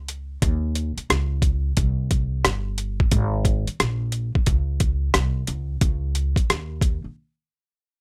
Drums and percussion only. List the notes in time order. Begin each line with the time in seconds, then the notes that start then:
0.08 closed hi-hat
0.42 kick, closed hi-hat
0.75 closed hi-hat
0.98 closed hi-hat
1.10 cross-stick, closed hi-hat
1.42 kick, closed hi-hat
1.77 kick, closed hi-hat
2.11 kick, closed hi-hat
2.45 cross-stick, closed hi-hat
2.78 closed hi-hat
3.00 kick
3.11 kick, closed hi-hat
3.45 kick, closed hi-hat
3.67 closed hi-hat
3.80 cross-stick, closed hi-hat
4.12 closed hi-hat
4.35 kick
4.46 kick, closed hi-hat
4.80 kick, closed hi-hat
5.14 cross-stick, closed hi-hat
5.47 closed hi-hat
5.81 kick, closed hi-hat
6.15 closed hi-hat
6.36 kick, closed hi-hat
6.50 cross-stick, closed hi-hat
6.81 kick, closed hi-hat